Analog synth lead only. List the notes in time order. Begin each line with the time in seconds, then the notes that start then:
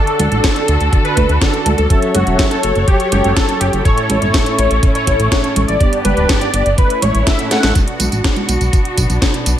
Already playing: A4
0.31 A4
0.56 A4
1.05 B4
1.41 A4
1.78 A4
2.15 F#4
2.51 A4
2.88 G4
3.12 G4
3.36 A4
3.60 G4
3.85 C#5
4.22 C#5
4.46 C#5
4.95 C#5
5.31 C#5
5.68 D5
6.05 B4
6.41 D5
6.78 B4
7.02 C#5
7.26 E5
7.51 F#5